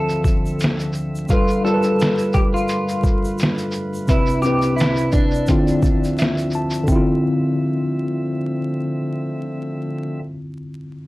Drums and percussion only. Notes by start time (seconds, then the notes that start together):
0.09 shaker
0.24 kick, shaker
0.27 shaker
0.46 shaker
0.60 closed hi-hat, shaker
0.64 snare
0.79 shaker
0.93 shaker
0.95 shaker
1.15 shaker
1.28 kick, closed hi-hat, shaker
1.30 shaker
1.48 shaker
1.50 shaker
1.66 shaker
1.83 shaker
1.99 closed hi-hat, shaker
2.02 snare, shaker
2.17 shaker
2.19 shaker
2.33 kick, shaker
2.56 shaker
2.68 closed hi-hat, shaker
2.88 shaker
3.03 kick, shaker
3.06 shaker
3.25 shaker
3.38 closed hi-hat, shaker
3.43 snare
3.58 shaker
3.71 shaker
3.74 shaker
3.94 shaker
4.08 kick, closed hi-hat, shaker
4.09 shaker
4.26 shaker
4.29 shaker
4.42 shaker
4.45 shaker
4.62 shaker
4.78 closed hi-hat, shaker
4.80 snare, shaker
4.96 shaker
4.98 shaker
5.12 kick, shaker
5.31 shaker
5.34 shaker
5.47 closed hi-hat, shaker
5.48 kick, shaker
5.67 shaker
5.82 kick, shaker
5.85 shaker
6.04 shaker
6.18 snare, closed hi-hat, shaker
6.37 shaker
6.50 shaker
6.53 shaker
6.70 shaker
6.74 shaker
6.87 kick, shaker